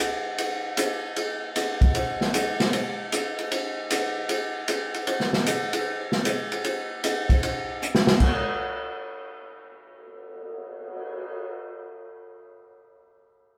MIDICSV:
0, 0, Header, 1, 3, 480
1, 0, Start_track
1, 0, Tempo, 391134
1, 464, Time_signature, 4, 2, 24, 8
1, 16663, End_track
2, 0, Start_track
2, 0, Title_t, "Cymbal swell"
2, 10391, Note_on_c, 9, 59, 39
2, 13814, Note_off_c, 9, 59, 0
2, 16663, End_track
3, 0, Start_track
3, 0, Title_t, "Drums"
3, 471, Note_on_c, 9, 51, 56
3, 593, Note_off_c, 9, 51, 0
3, 947, Note_on_c, 9, 44, 64
3, 947, Note_on_c, 9, 51, 65
3, 1069, Note_off_c, 9, 44, 0
3, 1069, Note_off_c, 9, 51, 0
3, 1428, Note_on_c, 9, 51, 57
3, 1551, Note_off_c, 9, 51, 0
3, 1911, Note_on_c, 9, 44, 44
3, 1911, Note_on_c, 9, 51, 67
3, 2033, Note_off_c, 9, 44, 0
3, 2033, Note_off_c, 9, 51, 0
3, 2225, Note_on_c, 9, 36, 56
3, 2227, Note_on_c, 9, 51, 42
3, 2348, Note_off_c, 9, 36, 0
3, 2350, Note_off_c, 9, 51, 0
3, 2389, Note_on_c, 9, 51, 55
3, 2512, Note_off_c, 9, 51, 0
3, 2713, Note_on_c, 9, 38, 30
3, 2836, Note_off_c, 9, 38, 0
3, 2871, Note_on_c, 9, 44, 54
3, 2871, Note_on_c, 9, 51, 70
3, 2994, Note_off_c, 9, 44, 0
3, 2994, Note_off_c, 9, 51, 0
3, 3191, Note_on_c, 9, 38, 42
3, 3193, Note_on_c, 9, 51, 44
3, 3314, Note_off_c, 9, 38, 0
3, 3316, Note_off_c, 9, 51, 0
3, 3351, Note_on_c, 9, 51, 58
3, 3473, Note_off_c, 9, 51, 0
3, 3833, Note_on_c, 9, 44, 54
3, 3833, Note_on_c, 9, 51, 65
3, 3955, Note_off_c, 9, 44, 0
3, 3955, Note_off_c, 9, 51, 0
3, 4155, Note_on_c, 9, 51, 38
3, 4278, Note_off_c, 9, 51, 0
3, 4315, Note_on_c, 9, 51, 58
3, 4437, Note_off_c, 9, 51, 0
3, 4792, Note_on_c, 9, 44, 63
3, 4792, Note_on_c, 9, 51, 73
3, 4915, Note_off_c, 9, 44, 0
3, 4915, Note_off_c, 9, 51, 0
3, 5265, Note_on_c, 9, 51, 60
3, 5388, Note_off_c, 9, 51, 0
3, 5742, Note_on_c, 9, 44, 45
3, 5742, Note_on_c, 9, 51, 63
3, 5865, Note_off_c, 9, 44, 0
3, 5865, Note_off_c, 9, 51, 0
3, 6067, Note_on_c, 9, 51, 43
3, 6190, Note_off_c, 9, 51, 0
3, 6222, Note_on_c, 9, 51, 61
3, 6345, Note_off_c, 9, 51, 0
3, 6382, Note_on_c, 9, 38, 26
3, 6504, Note_off_c, 9, 38, 0
3, 6544, Note_on_c, 9, 38, 40
3, 6666, Note_off_c, 9, 38, 0
3, 6706, Note_on_c, 9, 44, 63
3, 6706, Note_on_c, 9, 51, 69
3, 6829, Note_off_c, 9, 44, 0
3, 6829, Note_off_c, 9, 51, 0
3, 7032, Note_on_c, 9, 51, 62
3, 7154, Note_off_c, 9, 51, 0
3, 7510, Note_on_c, 9, 38, 33
3, 7632, Note_off_c, 9, 38, 0
3, 7671, Note_on_c, 9, 44, 58
3, 7671, Note_on_c, 9, 51, 61
3, 7794, Note_off_c, 9, 44, 0
3, 7794, Note_off_c, 9, 51, 0
3, 7998, Note_on_c, 9, 51, 43
3, 8121, Note_off_c, 9, 51, 0
3, 8154, Note_on_c, 9, 51, 53
3, 8277, Note_off_c, 9, 51, 0
3, 8636, Note_on_c, 9, 44, 61
3, 8636, Note_on_c, 9, 51, 69
3, 8758, Note_off_c, 9, 44, 0
3, 8758, Note_off_c, 9, 51, 0
3, 8952, Note_on_c, 9, 36, 44
3, 8957, Note_on_c, 9, 51, 43
3, 9075, Note_off_c, 9, 36, 0
3, 9080, Note_off_c, 9, 51, 0
3, 9118, Note_on_c, 9, 51, 51
3, 9240, Note_off_c, 9, 51, 0
3, 9598, Note_on_c, 9, 44, 57
3, 9721, Note_off_c, 9, 44, 0
3, 9752, Note_on_c, 9, 38, 51
3, 9875, Note_off_c, 9, 38, 0
3, 9908, Note_on_c, 9, 38, 72
3, 10030, Note_off_c, 9, 38, 0
3, 10065, Note_on_c, 9, 49, 59
3, 10067, Note_on_c, 9, 36, 50
3, 10187, Note_off_c, 9, 49, 0
3, 10190, Note_off_c, 9, 36, 0
3, 16663, End_track
0, 0, End_of_file